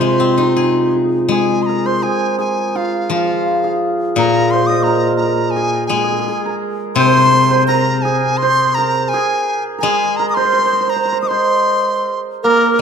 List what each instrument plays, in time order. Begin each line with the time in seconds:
Already playing: guzheng C3, hammered dulcimer F4 G#4 A#4 C5, dizi C6
0.01 guzheng G#3
0.20 guzheng C4
0.38 guzheng D#4
0.56 guzheng G#4
1.29 guzheng G#3, hammered dulcimer G#4, dizi G#5
1.62 dizi A#5 C6
1.69 hammered dulcimer A#4
1.86 hammered dulcimer C5, dizi C6
2.03 hammered dulcimer G#4, dizi G#5
2.39 hammered dulcimer G#4, dizi G#5
2.75 hammered dulcimer F4, dizi F5
3.10 guzheng F3, hammered dulcimer F4
3.14 dizi F5
3.64 hammered dulcimer G#4
4.16 guzheng A#2, hammered dulcimer A#4, dizi A#5
4.51 hammered dulcimer C5, dizi C6
4.67 hammered dulcimer D#5, dizi D#6
4.83 hammered dulcimer A#4, dizi A#5
5.17 hammered dulcimer A#4, dizi A#5
5.51 dizi G#5
5.56 hammered dulcimer G#4
5.87 guzheng G#3, hammered dulcimer G#4, dizi G#5
5.96 hammered dulcimer G#4
6.04 hammered dulcimer G#4
6.12 hammered dulcimer G#4
6.19 hammered dulcimer G#4
6.28 hammered dulcimer G#4
6.46 hammered dulcimer A#4
6.95 guzheng C3, hammered dulcimer C5, dizi C6
7.06 hammered dulcimer C5
7.13 hammered dulcimer C5
7.18 hammered dulcimer C5
7.26 hammered dulcimer C5
7.34 hammered dulcimer C5
7.51 hammered dulcimer C5
7.62 hammered dulcimer C5
7.68 hammered dulcimer A#4, dizi A#5
8.02 hammered dulcimer G#4, dizi G#5
8.37 dizi C6
8.42 hammered dulcimer C5
8.74 hammered dulcimer A#4, dizi A#5
9.09 dizi G#5
9.14 hammered dulcimer G#4
9.78 hammered dulcimer A#4, dizi G#5
9.83 guzheng G#3, hammered dulcimer G#4
10.16 hammered dulcimer A#4, dizi A#5
10.30 dizi D#6
10.35 hammered dulcimer C5, dizi C6
10.45 hammered dulcimer C5
10.53 hammered dulcimer C5
10.59 hammered dulcimer C5
10.66 hammered dulcimer C5
10.73 hammered dulcimer C5
10.81 hammered dulcimer C5
10.87 hammered dulcimer C5, dizi A#5
10.96 hammered dulcimer C5
11.05 hammered dulcimer C5
11.12 hammered dulcimer C5
11.22 hammered dulcimer D#5, dizi D#6
11.28 hammered dulcimer C5, dizi C6
12.43 hammered dulcimer A#3, dizi A#4
12.74 dizi A#4